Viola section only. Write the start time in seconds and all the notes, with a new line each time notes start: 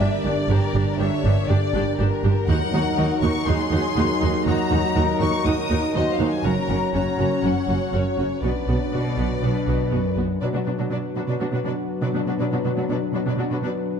0.00 D4 G4
0.25 D4 G4
0.50 D4 G4
0.75 D4 G4
1.00 D4 G4
1.24 D4 G4
1.49 D4 G4
1.74 D4 G4
1.98 D4 G4
2.23 D4 G4
2.48 D#4 F#4
2.73 D#4 F#4
2.97 D#4 F#4
3.22 D#4 F#4
3.47 D#4 F#4
3.72 D#4 F#4
3.96 D#4 F#4
4.21 D#4 F#4
4.47 D#4 F#4
4.71 D#4 F#4
4.96 D#4 F#4
5.21 D#4 F#4
5.45 D#4 F#4
5.70 D#4 F#4
5.95 D#4 F#4
6.19 D#4 F#4
6.44 C#4 F#4
6.69 C#4 F#4
6.93 C#4 F#4
7.18 C#4 F#4
7.43 C#4 F#4
7.68 C#4 F#4
7.93 C#4 F#4
8.18 C#4 F#4
8.43 B3 F#4
8.68 B3 F#4
8.92 B3 F#4
9.17 B3 F#4
9.42 B3 F#4
9.67 B3 F#4
9.91 B3 F#4
10.17 B3 F#4
10.42 F#3 D4
10.54 F#3 D4
10.66 F#3 D4
10.79 F#3 D4
10.91 F#3 D4
11.16 F#3 D4
11.28 F#3 D4
11.40 F#3 D4
11.52 F#3 D4
11.64 F#3 D4
12.02 F#3 D4
12.14 F#3 D4
12.27 F#3 D4
12.40 F#3 D4
12.52 F#3 D4
12.64 F#3 D4
12.77 F#3 D4
12.90 F#3 D4
13.14 F#3 D4
13.26 F#3 D4
13.38 F#3 D4
13.51 F#3 D4
13.63 F#3 D4